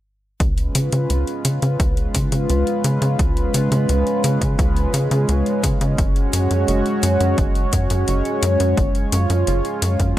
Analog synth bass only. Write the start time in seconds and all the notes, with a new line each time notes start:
0.40 C#2
0.75 C#3
0.93 C#3
1.10 C#2
1.45 C#3
1.62 C#3
1.80 C#2
2.15 C#3
2.32 C#3
2.50 C#2
2.84 C#3
3.02 C#3
3.19 C#2
3.54 C#3
3.72 C#3
3.89 C#2
4.24 C#3
4.41 C#3
4.59 C#2
4.94 C#3
5.11 C#3
5.29 C#2
5.63 C#3
5.81 C#3
5.98 F#1
6.33 F#2
6.51 F#2
6.68 F#1
7.03 F#2
7.20 F#2
7.38 F#1
7.73 F#2
7.90 F#2
8.08 F#1
8.43 F#2
8.60 F#2
8.77 F#1
9.12 F#2
9.30 F#2
9.47 F#1
9.82 F#2
10.00 F#2